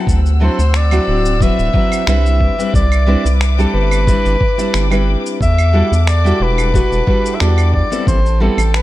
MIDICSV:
0, 0, Header, 1, 6, 480
1, 0, Start_track
1, 0, Key_signature, 1, "minor"
1, 0, Tempo, 666667
1, 55, Time_signature, 4, 2, 24, 8
1, 6352, End_track
2, 0, Start_track
2, 0, Title_t, "String section"
2, 0, Program_c, 0, 48
2, 52, Note_on_c, 0, 60, 74
2, 53, Note_on_c, 0, 88, 81
2, 54, Note_on_c, 0, 78, 68
2, 1717, Note_off_c, 0, 60, 0
2, 1717, Note_off_c, 0, 88, 0
2, 1718, Note_off_c, 0, 78, 0
2, 1725, Note_on_c, 0, 76, 70
2, 1725, Note_on_c, 0, 86, 83
2, 1728, Note_on_c, 0, 71, 79
2, 3868, Note_off_c, 0, 76, 0
2, 3868, Note_off_c, 0, 86, 0
2, 3870, Note_off_c, 0, 71, 0
2, 3890, Note_on_c, 0, 69, 77
2, 3890, Note_on_c, 0, 86, 83
2, 3894, Note_on_c, 0, 78, 66
2, 5794, Note_off_c, 0, 69, 0
2, 5794, Note_off_c, 0, 86, 0
2, 5795, Note_off_c, 0, 78, 0
2, 5806, Note_on_c, 0, 81, 84
2, 5809, Note_on_c, 0, 79, 67
2, 5810, Note_on_c, 0, 69, 76
2, 6352, Note_off_c, 0, 69, 0
2, 6352, Note_off_c, 0, 79, 0
2, 6352, Note_off_c, 0, 81, 0
2, 6352, End_track
3, 0, Start_track
3, 0, Title_t, "Soprano saxophone"
3, 0, Program_c, 1, 64
3, 315, Note_on_c, 1, 72, 83
3, 554, Note_on_c, 1, 74, 94
3, 565, Note_off_c, 1, 72, 0
3, 1027, Note_on_c, 1, 76, 104
3, 1038, Note_off_c, 1, 74, 0
3, 1501, Note_off_c, 1, 76, 0
3, 1506, Note_on_c, 1, 76, 97
3, 1952, Note_off_c, 1, 76, 0
3, 1981, Note_on_c, 1, 74, 90
3, 2429, Note_off_c, 1, 74, 0
3, 2693, Note_on_c, 1, 71, 110
3, 3625, Note_off_c, 1, 71, 0
3, 3905, Note_on_c, 1, 76, 111
3, 4344, Note_off_c, 1, 76, 0
3, 4344, Note_on_c, 1, 76, 69
3, 4379, Note_on_c, 1, 74, 98
3, 4390, Note_off_c, 1, 76, 0
3, 4624, Note_on_c, 1, 71, 89
3, 4635, Note_off_c, 1, 74, 0
3, 5292, Note_on_c, 1, 76, 66
3, 5303, Note_off_c, 1, 71, 0
3, 5332, Note_on_c, 1, 74, 88
3, 5342, Note_off_c, 1, 76, 0
3, 5569, Note_off_c, 1, 74, 0
3, 5573, Note_on_c, 1, 74, 91
3, 5797, Note_off_c, 1, 74, 0
3, 5815, Note_on_c, 1, 72, 95
3, 6058, Note_on_c, 1, 69, 84
3, 6069, Note_off_c, 1, 72, 0
3, 6303, Note_on_c, 1, 71, 87
3, 6314, Note_off_c, 1, 69, 0
3, 6352, Note_off_c, 1, 71, 0
3, 6352, End_track
4, 0, Start_track
4, 0, Title_t, "Nylon-string guitar"
4, 0, Program_c, 2, 24
4, 0, Note_on_c, 2, 54, 73
4, 0, Note_on_c, 2, 60, 69
4, 0, Note_on_c, 2, 62, 73
4, 0, Note_on_c, 2, 64, 71
4, 0, Note_on_c, 2, 69, 83
4, 133, Note_off_c, 2, 54, 0
4, 135, Note_off_c, 2, 60, 0
4, 137, Note_off_c, 2, 62, 0
4, 139, Note_off_c, 2, 64, 0
4, 139, Note_off_c, 2, 69, 0
4, 288, Note_on_c, 2, 54, 79
4, 294, Note_on_c, 2, 60, 74
4, 297, Note_on_c, 2, 62, 77
4, 301, Note_on_c, 2, 64, 77
4, 301, Note_on_c, 2, 69, 87
4, 420, Note_off_c, 2, 54, 0
4, 423, Note_off_c, 2, 60, 0
4, 425, Note_off_c, 2, 62, 0
4, 426, Note_off_c, 2, 69, 0
4, 427, Note_off_c, 2, 64, 0
4, 657, Note_on_c, 2, 54, 84
4, 661, Note_on_c, 2, 60, 79
4, 661, Note_on_c, 2, 62, 77
4, 665, Note_on_c, 2, 64, 74
4, 668, Note_on_c, 2, 66, 95
4, 986, Note_off_c, 2, 54, 0
4, 987, Note_off_c, 2, 60, 0
4, 988, Note_off_c, 2, 62, 0
4, 989, Note_off_c, 2, 64, 0
4, 991, Note_off_c, 2, 66, 0
4, 1010, Note_on_c, 2, 54, 84
4, 1015, Note_on_c, 2, 60, 74
4, 1018, Note_on_c, 2, 62, 77
4, 1021, Note_on_c, 2, 64, 78
4, 1026, Note_on_c, 2, 71, 92
4, 1211, Note_off_c, 2, 54, 0
4, 1213, Note_off_c, 2, 60, 0
4, 1215, Note_off_c, 2, 62, 0
4, 1216, Note_off_c, 2, 64, 0
4, 1219, Note_off_c, 2, 71, 0
4, 1248, Note_on_c, 2, 54, 82
4, 1252, Note_on_c, 2, 60, 69
4, 1257, Note_on_c, 2, 62, 70
4, 1262, Note_on_c, 2, 64, 72
4, 1262, Note_on_c, 2, 71, 83
4, 1464, Note_off_c, 2, 54, 0
4, 1466, Note_off_c, 2, 60, 0
4, 1469, Note_off_c, 2, 62, 0
4, 1470, Note_off_c, 2, 64, 0
4, 1471, Note_off_c, 2, 71, 0
4, 1491, Note_on_c, 2, 55, 81
4, 1494, Note_on_c, 2, 60, 72
4, 1498, Note_on_c, 2, 62, 69
4, 1502, Note_on_c, 2, 71, 89
4, 1503, Note_on_c, 2, 64, 75
4, 1829, Note_off_c, 2, 55, 0
4, 1831, Note_off_c, 2, 60, 0
4, 1832, Note_off_c, 2, 62, 0
4, 1834, Note_off_c, 2, 64, 0
4, 1835, Note_off_c, 2, 71, 0
4, 1860, Note_on_c, 2, 55, 76
4, 1863, Note_on_c, 2, 60, 65
4, 1869, Note_on_c, 2, 62, 72
4, 1870, Note_on_c, 2, 71, 85
4, 1871, Note_on_c, 2, 64, 67
4, 2054, Note_off_c, 2, 55, 0
4, 2056, Note_off_c, 2, 60, 0
4, 2058, Note_off_c, 2, 62, 0
4, 2059, Note_off_c, 2, 64, 0
4, 2060, Note_off_c, 2, 71, 0
4, 2207, Note_on_c, 2, 55, 82
4, 2212, Note_on_c, 2, 60, 76
4, 2216, Note_on_c, 2, 62, 71
4, 2218, Note_on_c, 2, 71, 90
4, 2220, Note_on_c, 2, 64, 76
4, 2339, Note_off_c, 2, 55, 0
4, 2342, Note_off_c, 2, 60, 0
4, 2344, Note_off_c, 2, 62, 0
4, 2345, Note_off_c, 2, 64, 0
4, 2345, Note_off_c, 2, 71, 0
4, 2580, Note_on_c, 2, 55, 82
4, 2581, Note_on_c, 2, 60, 82
4, 2583, Note_on_c, 2, 62, 77
4, 2588, Note_on_c, 2, 64, 74
4, 2591, Note_on_c, 2, 69, 91
4, 2907, Note_off_c, 2, 55, 0
4, 2907, Note_off_c, 2, 60, 0
4, 2909, Note_off_c, 2, 62, 0
4, 2911, Note_off_c, 2, 64, 0
4, 2913, Note_off_c, 2, 69, 0
4, 2932, Note_on_c, 2, 55, 87
4, 2936, Note_on_c, 2, 60, 76
4, 2941, Note_on_c, 2, 62, 78
4, 2943, Note_on_c, 2, 64, 78
4, 2946, Note_on_c, 2, 72, 94
4, 3132, Note_off_c, 2, 55, 0
4, 3134, Note_off_c, 2, 60, 0
4, 3135, Note_off_c, 2, 62, 0
4, 3137, Note_off_c, 2, 64, 0
4, 3139, Note_off_c, 2, 72, 0
4, 3296, Note_on_c, 2, 55, 74
4, 3296, Note_on_c, 2, 60, 69
4, 3300, Note_on_c, 2, 62, 67
4, 3302, Note_on_c, 2, 64, 67
4, 3306, Note_on_c, 2, 72, 84
4, 3508, Note_off_c, 2, 55, 0
4, 3509, Note_off_c, 2, 60, 0
4, 3510, Note_off_c, 2, 64, 0
4, 3511, Note_off_c, 2, 62, 0
4, 3513, Note_off_c, 2, 72, 0
4, 3530, Note_on_c, 2, 55, 78
4, 3533, Note_on_c, 2, 60, 67
4, 3538, Note_on_c, 2, 62, 66
4, 3543, Note_on_c, 2, 71, 76
4, 3545, Note_on_c, 2, 64, 66
4, 3876, Note_off_c, 2, 55, 0
4, 3877, Note_off_c, 2, 60, 0
4, 3880, Note_off_c, 2, 62, 0
4, 3881, Note_off_c, 2, 64, 0
4, 3882, Note_off_c, 2, 71, 0
4, 4125, Note_on_c, 2, 55, 81
4, 4131, Note_on_c, 2, 62, 70
4, 4135, Note_on_c, 2, 66, 72
4, 4136, Note_on_c, 2, 64, 69
4, 4140, Note_on_c, 2, 69, 87
4, 4259, Note_off_c, 2, 55, 0
4, 4261, Note_off_c, 2, 62, 0
4, 4263, Note_off_c, 2, 64, 0
4, 4264, Note_off_c, 2, 66, 0
4, 4266, Note_off_c, 2, 69, 0
4, 4495, Note_on_c, 2, 55, 83
4, 4500, Note_on_c, 2, 62, 74
4, 4505, Note_on_c, 2, 66, 82
4, 4506, Note_on_c, 2, 64, 74
4, 4510, Note_on_c, 2, 69, 93
4, 4825, Note_off_c, 2, 55, 0
4, 4827, Note_off_c, 2, 62, 0
4, 4829, Note_off_c, 2, 64, 0
4, 4830, Note_off_c, 2, 66, 0
4, 4832, Note_off_c, 2, 69, 0
4, 4851, Note_on_c, 2, 55, 89
4, 4855, Note_on_c, 2, 62, 79
4, 4860, Note_on_c, 2, 66, 78
4, 4862, Note_on_c, 2, 71, 96
4, 4864, Note_on_c, 2, 64, 78
4, 5051, Note_off_c, 2, 55, 0
4, 5053, Note_off_c, 2, 62, 0
4, 5056, Note_off_c, 2, 64, 0
4, 5056, Note_off_c, 2, 71, 0
4, 5057, Note_off_c, 2, 66, 0
4, 5089, Note_on_c, 2, 55, 74
4, 5091, Note_on_c, 2, 62, 69
4, 5095, Note_on_c, 2, 66, 68
4, 5097, Note_on_c, 2, 64, 68
4, 5098, Note_on_c, 2, 71, 82
4, 5305, Note_off_c, 2, 55, 0
4, 5305, Note_off_c, 2, 62, 0
4, 5308, Note_off_c, 2, 64, 0
4, 5308, Note_off_c, 2, 66, 0
4, 5309, Note_off_c, 2, 71, 0
4, 5324, Note_on_c, 2, 55, 81
4, 5328, Note_on_c, 2, 62, 72
4, 5333, Note_on_c, 2, 66, 73
4, 5335, Note_on_c, 2, 64, 72
4, 5338, Note_on_c, 2, 69, 86
4, 5666, Note_off_c, 2, 55, 0
4, 5667, Note_off_c, 2, 62, 0
4, 5669, Note_off_c, 2, 64, 0
4, 5670, Note_off_c, 2, 66, 0
4, 5673, Note_off_c, 2, 69, 0
4, 5690, Note_on_c, 2, 55, 75
4, 5695, Note_on_c, 2, 59, 73
4, 5699, Note_on_c, 2, 60, 73
4, 5700, Note_on_c, 2, 64, 70
4, 5703, Note_on_c, 2, 69, 83
4, 5889, Note_off_c, 2, 55, 0
4, 5892, Note_off_c, 2, 59, 0
4, 5893, Note_off_c, 2, 64, 0
4, 5894, Note_off_c, 2, 60, 0
4, 5896, Note_off_c, 2, 69, 0
4, 6050, Note_on_c, 2, 55, 86
4, 6054, Note_on_c, 2, 59, 72
4, 6055, Note_on_c, 2, 60, 71
4, 6059, Note_on_c, 2, 69, 90
4, 6060, Note_on_c, 2, 64, 77
4, 6181, Note_off_c, 2, 55, 0
4, 6183, Note_off_c, 2, 59, 0
4, 6184, Note_off_c, 2, 60, 0
4, 6185, Note_off_c, 2, 64, 0
4, 6186, Note_off_c, 2, 69, 0
4, 6352, End_track
5, 0, Start_track
5, 0, Title_t, "Analog synth bass"
5, 0, Program_c, 3, 38
5, 52, Note_on_c, 3, 38, 99
5, 356, Note_off_c, 3, 38, 0
5, 423, Note_on_c, 3, 38, 80
5, 718, Note_off_c, 3, 38, 0
5, 776, Note_on_c, 3, 26, 101
5, 1078, Note_off_c, 3, 26, 0
5, 1139, Note_on_c, 3, 26, 89
5, 1218, Note_off_c, 3, 26, 0
5, 1493, Note_on_c, 3, 36, 94
5, 1796, Note_off_c, 3, 36, 0
5, 1971, Note_on_c, 3, 36, 104
5, 2275, Note_off_c, 3, 36, 0
5, 2341, Note_on_c, 3, 36, 80
5, 2637, Note_off_c, 3, 36, 0
5, 2693, Note_on_c, 3, 31, 95
5, 2996, Note_off_c, 3, 31, 0
5, 3065, Note_on_c, 3, 31, 79
5, 3141, Note_off_c, 3, 31, 0
5, 3414, Note_on_c, 3, 31, 92
5, 3717, Note_off_c, 3, 31, 0
5, 3893, Note_on_c, 3, 40, 99
5, 4196, Note_off_c, 3, 40, 0
5, 4260, Note_on_c, 3, 40, 81
5, 4557, Note_off_c, 3, 40, 0
5, 4610, Note_on_c, 3, 28, 100
5, 4915, Note_off_c, 3, 28, 0
5, 4977, Note_on_c, 3, 28, 85
5, 5057, Note_off_c, 3, 28, 0
5, 5336, Note_on_c, 3, 40, 92
5, 5638, Note_off_c, 3, 40, 0
5, 5811, Note_on_c, 3, 33, 100
5, 6115, Note_off_c, 3, 33, 0
5, 6175, Note_on_c, 3, 33, 78
5, 6352, Note_off_c, 3, 33, 0
5, 6352, End_track
6, 0, Start_track
6, 0, Title_t, "Drums"
6, 52, Note_on_c, 9, 36, 109
6, 62, Note_on_c, 9, 82, 53
6, 124, Note_off_c, 9, 36, 0
6, 134, Note_off_c, 9, 82, 0
6, 187, Note_on_c, 9, 82, 31
6, 259, Note_off_c, 9, 82, 0
6, 427, Note_on_c, 9, 82, 63
6, 499, Note_off_c, 9, 82, 0
6, 532, Note_on_c, 9, 26, 89
6, 539, Note_on_c, 9, 82, 50
6, 604, Note_off_c, 9, 26, 0
6, 611, Note_off_c, 9, 82, 0
6, 657, Note_on_c, 9, 75, 72
6, 664, Note_on_c, 9, 82, 32
6, 729, Note_off_c, 9, 75, 0
6, 736, Note_off_c, 9, 82, 0
6, 903, Note_on_c, 9, 82, 68
6, 975, Note_off_c, 9, 82, 0
6, 1012, Note_on_c, 9, 36, 115
6, 1020, Note_on_c, 9, 82, 51
6, 1084, Note_off_c, 9, 36, 0
6, 1092, Note_off_c, 9, 82, 0
6, 1146, Note_on_c, 9, 82, 32
6, 1218, Note_off_c, 9, 82, 0
6, 1252, Note_on_c, 9, 36, 109
6, 1324, Note_off_c, 9, 36, 0
6, 1381, Note_on_c, 9, 75, 64
6, 1388, Note_on_c, 9, 82, 66
6, 1453, Note_off_c, 9, 75, 0
6, 1460, Note_off_c, 9, 82, 0
6, 1492, Note_on_c, 9, 26, 93
6, 1499, Note_on_c, 9, 82, 54
6, 1564, Note_off_c, 9, 26, 0
6, 1571, Note_off_c, 9, 82, 0
6, 1627, Note_on_c, 9, 82, 31
6, 1699, Note_off_c, 9, 82, 0
6, 1732, Note_on_c, 9, 36, 64
6, 1804, Note_off_c, 9, 36, 0
6, 1870, Note_on_c, 9, 82, 63
6, 1942, Note_off_c, 9, 82, 0
6, 1972, Note_on_c, 9, 36, 112
6, 1981, Note_on_c, 9, 82, 55
6, 2044, Note_off_c, 9, 36, 0
6, 2053, Note_off_c, 9, 82, 0
6, 2101, Note_on_c, 9, 75, 71
6, 2107, Note_on_c, 9, 82, 33
6, 2173, Note_off_c, 9, 75, 0
6, 2179, Note_off_c, 9, 82, 0
6, 2346, Note_on_c, 9, 82, 68
6, 2418, Note_off_c, 9, 82, 0
6, 2454, Note_on_c, 9, 26, 82
6, 2461, Note_on_c, 9, 82, 52
6, 2526, Note_off_c, 9, 26, 0
6, 2533, Note_off_c, 9, 82, 0
6, 2589, Note_on_c, 9, 82, 32
6, 2661, Note_off_c, 9, 82, 0
6, 2818, Note_on_c, 9, 75, 72
6, 2825, Note_on_c, 9, 82, 63
6, 2890, Note_off_c, 9, 75, 0
6, 2897, Note_off_c, 9, 82, 0
6, 2933, Note_on_c, 9, 36, 118
6, 2938, Note_on_c, 9, 82, 56
6, 3005, Note_off_c, 9, 36, 0
6, 3010, Note_off_c, 9, 82, 0
6, 3065, Note_on_c, 9, 82, 30
6, 3137, Note_off_c, 9, 82, 0
6, 3173, Note_on_c, 9, 36, 103
6, 3245, Note_off_c, 9, 36, 0
6, 3304, Note_on_c, 9, 82, 64
6, 3376, Note_off_c, 9, 82, 0
6, 3412, Note_on_c, 9, 26, 87
6, 3419, Note_on_c, 9, 82, 52
6, 3484, Note_off_c, 9, 26, 0
6, 3491, Note_off_c, 9, 82, 0
6, 3539, Note_on_c, 9, 75, 74
6, 3546, Note_on_c, 9, 82, 31
6, 3611, Note_off_c, 9, 75, 0
6, 3618, Note_off_c, 9, 82, 0
6, 3788, Note_on_c, 9, 82, 64
6, 3860, Note_off_c, 9, 82, 0
6, 3893, Note_on_c, 9, 36, 108
6, 3903, Note_on_c, 9, 82, 54
6, 3965, Note_off_c, 9, 36, 0
6, 3975, Note_off_c, 9, 82, 0
6, 4021, Note_on_c, 9, 75, 75
6, 4028, Note_on_c, 9, 82, 33
6, 4093, Note_off_c, 9, 75, 0
6, 4100, Note_off_c, 9, 82, 0
6, 4269, Note_on_c, 9, 82, 60
6, 4341, Note_off_c, 9, 82, 0
6, 4373, Note_on_c, 9, 26, 84
6, 4380, Note_on_c, 9, 82, 53
6, 4445, Note_off_c, 9, 26, 0
6, 4452, Note_off_c, 9, 82, 0
6, 4509, Note_on_c, 9, 82, 30
6, 4581, Note_off_c, 9, 82, 0
6, 4739, Note_on_c, 9, 75, 72
6, 4745, Note_on_c, 9, 82, 62
6, 4811, Note_off_c, 9, 75, 0
6, 4817, Note_off_c, 9, 82, 0
6, 4853, Note_on_c, 9, 36, 112
6, 4861, Note_on_c, 9, 82, 52
6, 4925, Note_off_c, 9, 36, 0
6, 4933, Note_off_c, 9, 82, 0
6, 4986, Note_on_c, 9, 82, 32
6, 5058, Note_off_c, 9, 82, 0
6, 5093, Note_on_c, 9, 36, 100
6, 5165, Note_off_c, 9, 36, 0
6, 5225, Note_on_c, 9, 82, 64
6, 5297, Note_off_c, 9, 82, 0
6, 5330, Note_on_c, 9, 26, 82
6, 5337, Note_on_c, 9, 82, 50
6, 5402, Note_off_c, 9, 26, 0
6, 5409, Note_off_c, 9, 82, 0
6, 5456, Note_on_c, 9, 75, 69
6, 5463, Note_on_c, 9, 82, 30
6, 5528, Note_off_c, 9, 75, 0
6, 5535, Note_off_c, 9, 82, 0
6, 5571, Note_on_c, 9, 36, 59
6, 5643, Note_off_c, 9, 36, 0
6, 5703, Note_on_c, 9, 82, 60
6, 5775, Note_off_c, 9, 82, 0
6, 5810, Note_on_c, 9, 36, 116
6, 5817, Note_on_c, 9, 82, 51
6, 5882, Note_off_c, 9, 36, 0
6, 5889, Note_off_c, 9, 82, 0
6, 5947, Note_on_c, 9, 82, 31
6, 6019, Note_off_c, 9, 82, 0
6, 6178, Note_on_c, 9, 75, 76
6, 6185, Note_on_c, 9, 82, 59
6, 6250, Note_off_c, 9, 75, 0
6, 6257, Note_off_c, 9, 82, 0
6, 6295, Note_on_c, 9, 26, 87
6, 6301, Note_on_c, 9, 82, 47
6, 6352, Note_off_c, 9, 26, 0
6, 6352, Note_off_c, 9, 82, 0
6, 6352, End_track
0, 0, End_of_file